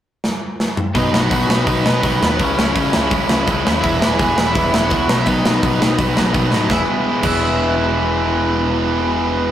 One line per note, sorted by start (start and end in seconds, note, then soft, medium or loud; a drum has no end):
0.24 snare medium
0.60 snare medium
0.77 mid tom loud
0.95 1.11 B1 loud
0.95 1.11 B2 medium
0.95 1.12 D#3 loud
0.95 1.12 F#3 medium
0.95 1.13 B3 medium
0.95 1.20 D#4 medium
0.95 1.14 D#4 loud
0.95 1.21 D#5 medium
0.95 kick loud
0.95 open hi-hat medium
1.12 1.28 B1 loud
1.12 1.29 B2 medium
1.12 1.30 D#3 medium
1.12 1.31 F#3 loud
1.12 1.31 B3 loud
1.12 1.32 D#4 loud
1.12 snare loud
1.21 1.29 F#4 medium
1.21 1.31 F#5 medium
1.30 1.47 B1 medium
1.30 1.46 B2 medium
1.30 1.47 D#3 medium
1.30 1.47 F#3 medium
1.30 1.49 B3 medium
1.30 1.49 D#4 loud
1.30 1.54 F#4 medium
1.30 1.55 F#5 medium
1.30 kick loud
1.30 open hi-hat medium
1.47 1.64 B1 medium
1.47 1.65 B2 medium
1.47 1.66 D#3 medium
1.47 1.67 F#3 medium
1.47 1.67 B3 medium
1.47 1.67 D#4 medium
1.47 snare loud
1.55 1.90 D#4 medium
1.55 1.93 D#5 medium
1.67 1.83 B1 medium
1.67 1.83 B2 medium
1.67 1.84 D#3 medium
1.67 1.85 F#3 medium
1.67 1.86 B3 medium
1.67 1.86 D#4 loud
1.67 kick loud
1.67 open hi-hat medium
1.84 2.01 B1 medium
1.84 2.02 B2 medium
1.84 2.03 D#3 medium
1.84 2.04 F#3 medium
1.84 2.03 B3 medium
1.84 2.04 D#4 medium
1.84 snare loud
1.93 2.28 B3 medium
1.93 2.28 B4 medium
2.03 2.20 B1 medium
2.03 2.20 B2 medium
2.03 2.20 D#3 medium
2.03 2.21 F#3 medium
2.03 2.21 B3 medium
2.03 2.22 D#4 loud
2.03 kick loud
2.03 open hi-hat medium
2.21 2.40 D#2 medium
2.21 2.38 B2 medium
2.21 2.39 D#3 medium
2.21 2.39 F#3 medium
2.21 2.39 B3 loud
2.21 2.40 D#4 medium
2.21 snare loud
2.29 2.39 B3 medium
2.29 2.41 B4 medium
2.39 2.56 C#2 loud
2.39 2.56 C#3 loud
2.39 2.57 G#3 loud
2.39 2.57 C#4 loud
2.39 3.09 C#4 medium
2.39 2.59 E4 loud
2.39 3.12 C#5 medium
2.39 kick loud
2.39 open hi-hat medium
2.57 2.74 C#2 medium
2.57 2.75 C#3 medium
2.57 2.76 G#3 medium
2.57 2.76 C#4 medium
2.57 2.77 E4 medium
2.57 snare loud
2.76 2.92 C#2 medium
2.76 2.94 C#3 medium
2.76 2.94 G#3 medium
2.76 2.94 C#4 medium
2.76 2.95 E4 medium
2.76 kick loud
2.76 open hi-hat soft
2.93 3.11 C#2 medium
2.93 3.10 C#3 medium
2.93 3.11 G#3 medium
2.93 3.11 C#4 medium
2.93 3.11 E4 medium
2.93 snare loud
3.11 3.27 C#2 medium
3.11 3.28 C#3 loud
3.11 3.29 G#3 loud
3.11 3.29 C#4 loud
3.11 3.30 E4 medium
3.11 kick loud
3.11 open hi-hat medium
3.29 3.46 C#2 medium
3.29 3.47 C#3 medium
3.29 3.49 G#3 medium
3.29 3.49 C#4 medium
3.29 3.50 E4 loud
3.29 snare loud
3.47 3.63 C#2 medium
3.47 3.65 C#3 medium
3.47 3.65 G#3 medium
3.47 3.66 C#4 medium
3.47 3.67 E4 medium
3.47 kick loud
3.47 open hi-hat medium
3.66 3.83 D#2 medium
3.66 3.83 C#3 medium
3.66 3.83 G#3 medium
3.66 3.84 C#4 medium
3.66 3.84 E4 loud
3.66 snare loud
3.81 4.00 E1 medium
3.81 4.01 E3 loud
3.81 4.02 G#3 loud
3.81 4.03 B3 loud
3.81 4.07 E4 medium
3.81 4.11 E5 medium
3.81 kick loud
3.81 open hi-hat medium
3.86 4.03 E4 loud
4.02 4.19 E1 medium
4.02 4.19 E3 medium
4.02 4.19 G#3 medium
4.02 4.21 B3 medium
4.02 4.20 E4 loud
4.02 snare loud
4.08 4.18 G#4 medium
4.08 4.18 G#5 medium
4.19 4.35 E1 medium
4.19 4.36 E3 medium
4.19 4.36 G#3 medium
4.19 4.38 B3 medium
4.19 4.38 E4 medium
4.19 4.45 G#4 medium
4.19 4.47 G#5 medium
4.19 kick loud
4.19 open hi-hat medium
4.37 4.53 E1 medium
4.37 4.54 E3 medium
4.37 4.55 G#3 medium
4.37 4.57 B3 medium
4.37 4.56 E4 medium
4.37 snare loud
4.46 4.81 E4 medium
4.46 4.83 E5 medium
4.55 4.72 E1 loud
4.55 4.71 E3 loud
4.55 4.72 G#3 medium
4.55 4.74 B3 loud
4.55 4.74 E4 loud
4.55 kick loud
4.55 open hi-hat medium
4.72 4.89 E1 medium
4.72 4.91 E3 medium
4.72 4.91 G#3 medium
4.72 4.93 B3 medium
4.72 4.92 E4 loud
4.72 snare loud
4.84 5.17 F#4 medium
4.84 5.17 F#5 medium
4.90 5.07 C#2 medium
4.90 5.09 E3 medium
4.90 5.09 G#3 medium
4.90 5.10 B3 medium
4.90 5.09 E4 loud
4.90 kick loud
4.90 open hi-hat medium
5.08 5.24 B1 medium
5.08 5.25 B2 medium
5.08 5.25 D#3 loud
5.08 5.26 F#3 loud
5.08 5.26 B3 loud
5.08 5.27 D#4 loud
5.08 snare loud
5.20 5.27 E4 medium
5.20 5.28 E5 medium
5.26 5.43 B1 medium
5.26 5.42 B2 loud
5.26 5.43 D#3 medium
5.26 5.43 F#3 loud
5.26 5.44 B3 loud
5.26 5.44 D#4 loud
5.26 5.96 D#4 medium
5.26 5.99 D#5 medium
5.26 kick loud
5.26 open hi-hat medium
5.43 5.61 B1 medium
5.43 5.61 B2 medium
5.43 5.62 D#3 medium
5.43 5.62 F#3 medium
5.43 5.63 B3 medium
5.43 5.63 D#4 medium
5.43 snare loud
5.63 5.79 B1 medium
5.63 5.79 B2 medium
5.63 5.79 D#3 medium
5.63 5.80 F#3 medium
5.63 5.80 B3 medium
5.63 5.80 D#4 loud
5.63 kick loud
5.63 open hi-hat medium
5.80 5.97 B1 medium
5.80 5.97 B2 medium
5.80 5.98 D#3 medium
5.80 5.98 F#3 medium
5.80 5.99 B3 medium
5.80 6.00 D#4 medium
5.80 snare loud
5.98 6.15 B1 medium
5.98 6.15 B2 medium
5.98 6.16 D#3 medium
5.98 6.16 F#3 loud
5.98 6.17 B3 loud
5.98 6.17 D#4 loud
5.98 kick loud
5.98 open hi-hat medium
6.16 6.33 B1 medium
6.16 6.33 B2 medium
6.16 6.33 D#3 medium
6.16 6.34 F#3 medium
6.16 6.34 B3 medium
6.16 6.35 D#4 medium
6.16 snare loud
6.34 6.51 B1 medium
6.34 6.49 B2 medium
6.34 6.50 D#3 medium
6.34 6.50 F#3 medium
6.34 6.51 B3 medium
6.34 6.52 D#4 medium
6.34 kick loud
6.34 open hi-hat medium
6.50 6.69 A2 medium
6.50 6.68 B2 medium
6.50 6.67 D#3 medium
6.50 6.68 F#3 medium
6.50 6.69 B3 medium
6.50 6.70 D#4 loud
6.50 snare medium
6.68 6.81 E1 loud
6.68 7.21 E3 medium
6.68 7.23 G#3 loud
6.68 7.24 B3 loud
6.68 7.25 E4 loud
6.68 kick loud
6.68 snare medium
6.72 7.26 G#4 loud
6.72 6.81 E5 medium
7.22 9.51 E1 medium
7.22 9.51 E3 medium
7.22 9.51 G#3 loud
7.22 9.51 B3 medium
7.22 kick loud
7.22 crash loud
7.26 9.51 E4 medium
7.26 9.51 G#4 loud
7.26 9.51 E5 medium